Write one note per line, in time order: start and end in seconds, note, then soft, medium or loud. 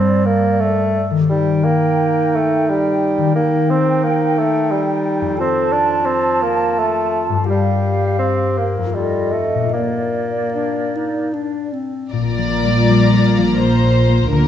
0.00 1.24 G2 soft
0.00 0.98 G3 soft
0.00 0.27 C4 medium
0.00 1.26 D4 soft
0.00 1.19 G4 soft
0.00 1.06 D5 soft
0.00 1.31 D5 soft
0.26 0.62 A#3 medium
0.60 1.06 A3 medium
1.11 3.17 D#3 soft
1.16 3.21 D#4 soft
1.20 3.25 G4 soft
1.25 3.32 D#4 soft
1.25 3.37 C5 soft
1.29 1.65 G3 medium
1.29 2.66 G5 soft
1.64 2.37 A#3 medium
2.35 2.71 A3 medium
2.68 3.34 G3 medium
2.68 3.34 G5 soft
3.18 5.33 D#3 soft
3.22 5.25 D#4 soft
3.26 5.37 G4 soft
3.31 5.39 A#4 soft
3.35 3.71 A#3 medium
3.35 5.35 D#4 soft
3.35 5.35 G5 soft
3.70 4.05 C4 medium
4.03 4.40 A#3 medium
4.38 4.72 A3 medium
4.71 5.39 G3 medium
5.21 7.41 F2 soft
5.26 7.44 D#4 soft
5.31 7.37 F4 soft
5.36 7.43 F4 soft
5.36 7.48 A4 soft
5.36 7.47 A5 soft
5.40 5.74 C4 medium
5.72 6.07 D4 medium
6.06 6.43 C4 medium
6.42 6.80 A#3 medium
6.79 7.24 A3 medium
7.29 8.89 G2 soft
7.33 9.58 D4 soft
7.38 8.85 F4 soft
7.42 8.77 G4 soft
7.42 8.96 A#4 soft
7.47 8.17 G3 medium
7.47 8.72 F5 soft
8.19 8.58 C4 medium
8.57 8.96 A#3 soft
8.78 9.67 F2 soft
8.82 9.70 D#4 soft
8.87 9.63 F4 soft
8.91 9.34 G3 soft
8.91 9.44 F4 soft
8.91 9.74 A4 soft
8.96 9.72 D#5 soft
9.32 9.72 A3 soft
9.55 12.06 A#2 soft
9.60 13.50 D4 soft
9.64 13.54 F4 soft
9.68 13.13 A#4 soft
9.68 11.77 D5 soft
9.73 11.30 A#3 soft
9.73 10.43 A#3 soft
10.54 10.97 D4 soft
10.95 11.35 D#4 soft
11.33 11.74 D4 soft
11.73 12.12 C4 soft
12.12 14.27 A#1 soft
12.12 14.34 A#2 soft
12.12 14.27 A#2 soft
12.12 14.27 A#3 soft
12.12 14.27 F4 soft
12.12 13.57 D5 medium
12.12 14.27 A#5 soft
12.37 12.87 F3 soft
12.64 13.06 G3 soft
12.88 13.37 F3 soft
13.14 14.48 A#4 soft
13.38 14.48 F3 soft
13.60 14.07 A#3 soft
13.60 14.31 C5 medium
13.85 14.24 C4 soft
14.09 14.48 A#3 soft
14.31 14.48 D2 soft
14.31 14.48 D3 soft
14.31 14.48 A#3 soft
14.31 14.48 F4 soft
14.31 14.48 A#4 medium
14.31 14.48 A#5 soft